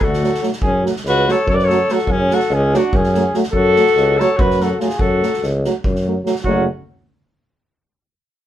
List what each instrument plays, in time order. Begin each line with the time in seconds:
0.01 tuba D2, alto saxophone F#4, flugelhorn A4, kick
0.13 snare
0.21 euphonium F#3 A3, snare
0.34 snare
0.41 euphonium F#3 A3, snare
0.52 snare
0.62 tuba F#2, flugelhorn G#4, kick
0.66 alto saxophone C#4
0.83 euphonium F#3 A3, snare
0.96 snare
1.05 tuba C#2, alto saxophone F#4, flugelhorn B4, snare
1.27 euphonium F#3 A3, flugelhorn C#5, snare
1.31 alto saxophone A4
1.47 tuba F#2, alto saxophone A4, flugelhorn C#5, kick
1.54 alto saxophone B4, flugelhorn D5
1.59 snare
1.64 alto saxophone A4, flugelhorn C#5
1.69 euphonium F#3 A3, snare
1.88 euphonium F#3 A3, flugelhorn A4, snare
1.93 alto saxophone F#4
1.98 snare
2.07 tuba F#2, alto saxophone C#4, flugelhorn G#4, kick
2.30 euphonium F#3 A3, alto saxophone F#4, snare
2.35 flugelhorn A4
2.40 snare
2.50 tuba C#2, alto saxophone C#4, snare
2.54 flugelhorn G#4
2.73 euphonium F#3 A3, alto saxophone D4, flugelhorn F#4, snare
2.93 tuba F#2, alto saxophone C#4, flugelhorn G#4, kick
3.03 snare
3.14 euphonium F#3 A3, snare
3.34 euphonium F#3 A3, snare
3.43 snare
3.53 tuba F#2, alto saxophone F#4, flugelhorn A4, kick
3.76 euphonium F#3 A3, snare
3.86 snare
3.96 tuba C#2, snare
4.17 euphonium F#3 A3, alto saxophone A4, flugelhorn C#5, snare
4.36 tuba F#2, alto saxophone F#4, flugelhorn B4, kick
4.50 snare
4.59 euphonium F#3 A3, alto saxophone F#4, flugelhorn A4, snare
4.79 euphonium F#3 A3, alto saxophone F4, flugelhorn G#4, snare
4.90 snare
4.98 tuba F#2, alto saxophone F#4, flugelhorn A4, kick
5.22 euphonium F#3 A3, snare
5.33 snare
5.43 tuba C#2, snare
5.64 euphonium F#3 A3, snare
5.84 tuba F#2, kick
5.95 snare
6.06 euphonium F#3 A3
6.25 euphonium F#3 A3, snare
6.35 snare
6.44 tuba F#1, euphonium F#3 A3, alto saxophone C#4, flugelhorn F#4, kick